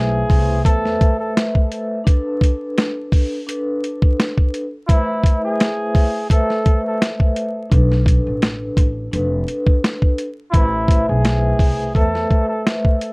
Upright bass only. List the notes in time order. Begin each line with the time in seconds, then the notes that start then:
Already playing: B1
0.30 C2
0.66 E2
7.72 B1
8.27 A1
8.77 A1
9.13 F1
10.54 A1
11.09 B1
11.59 C2
11.95 E2